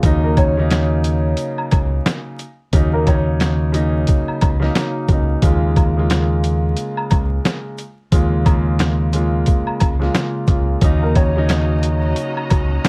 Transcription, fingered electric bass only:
0, 0, Header, 1, 2, 480
1, 0, Start_track
1, 0, Key_signature, -6, "minor"
1, 0, Tempo, 674157
1, 23, Time_signature, 4, 2, 24, 8
1, 9175, End_track
2, 0, Start_track
2, 0, Title_t, "Fingered electric bass"
2, 0, Program_c, 0, 33
2, 25, Note_on_c, 0, 39, 115
2, 955, Note_off_c, 0, 39, 0
2, 1229, Note_on_c, 0, 37, 95
2, 1416, Note_off_c, 0, 37, 0
2, 1944, Note_on_c, 0, 39, 114
2, 2875, Note_off_c, 0, 39, 0
2, 3150, Note_on_c, 0, 37, 94
2, 3336, Note_off_c, 0, 37, 0
2, 3624, Note_on_c, 0, 37, 101
2, 3812, Note_off_c, 0, 37, 0
2, 3865, Note_on_c, 0, 39, 115
2, 4795, Note_off_c, 0, 39, 0
2, 5070, Note_on_c, 0, 37, 102
2, 5256, Note_off_c, 0, 37, 0
2, 5785, Note_on_c, 0, 39, 107
2, 6715, Note_off_c, 0, 39, 0
2, 6989, Note_on_c, 0, 37, 94
2, 7175, Note_off_c, 0, 37, 0
2, 7463, Note_on_c, 0, 37, 97
2, 7652, Note_off_c, 0, 37, 0
2, 7703, Note_on_c, 0, 39, 112
2, 8634, Note_off_c, 0, 39, 0
2, 8909, Note_on_c, 0, 37, 96
2, 9095, Note_off_c, 0, 37, 0
2, 9175, End_track
0, 0, End_of_file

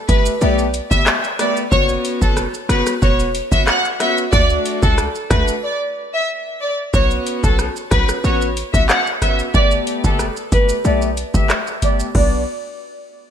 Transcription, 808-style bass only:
0, 0, Header, 1, 2, 480
1, 0, Start_track
1, 0, Key_signature, 2, "minor"
1, 0, Tempo, 652174
1, 1264, Time_signature, 4, 2, 24, 8
1, 9791, End_track
2, 0, Start_track
2, 0, Title_t, "808-style bass"
2, 0, Program_c, 0, 38
2, 65, Note_on_c, 0, 31, 95
2, 165, Note_off_c, 0, 31, 0
2, 306, Note_on_c, 0, 35, 104
2, 595, Note_off_c, 0, 35, 0
2, 670, Note_on_c, 0, 30, 96
2, 759, Note_off_c, 0, 30, 0
2, 1265, Note_on_c, 0, 30, 111
2, 1454, Note_off_c, 0, 30, 0
2, 1631, Note_on_c, 0, 30, 89
2, 1820, Note_off_c, 0, 30, 0
2, 1981, Note_on_c, 0, 30, 99
2, 2082, Note_off_c, 0, 30, 0
2, 2225, Note_on_c, 0, 28, 98
2, 2515, Note_off_c, 0, 28, 0
2, 2589, Note_on_c, 0, 30, 90
2, 2679, Note_off_c, 0, 30, 0
2, 3184, Note_on_c, 0, 38, 117
2, 3374, Note_off_c, 0, 38, 0
2, 3551, Note_on_c, 0, 37, 95
2, 3741, Note_off_c, 0, 37, 0
2, 3905, Note_on_c, 0, 38, 103
2, 4005, Note_off_c, 0, 38, 0
2, 5105, Note_on_c, 0, 35, 104
2, 5294, Note_off_c, 0, 35, 0
2, 5473, Note_on_c, 0, 35, 87
2, 5662, Note_off_c, 0, 35, 0
2, 5825, Note_on_c, 0, 35, 100
2, 5925, Note_off_c, 0, 35, 0
2, 6065, Note_on_c, 0, 33, 96
2, 6355, Note_off_c, 0, 33, 0
2, 6430, Note_on_c, 0, 35, 92
2, 6520, Note_off_c, 0, 35, 0
2, 7024, Note_on_c, 0, 31, 102
2, 7213, Note_off_c, 0, 31, 0
2, 7391, Note_on_c, 0, 30, 92
2, 7581, Note_off_c, 0, 30, 0
2, 7744, Note_on_c, 0, 31, 96
2, 7844, Note_off_c, 0, 31, 0
2, 7984, Note_on_c, 0, 35, 100
2, 8274, Note_off_c, 0, 35, 0
2, 8348, Note_on_c, 0, 30, 95
2, 8438, Note_off_c, 0, 30, 0
2, 8942, Note_on_c, 0, 35, 102
2, 9166, Note_off_c, 0, 35, 0
2, 9791, End_track
0, 0, End_of_file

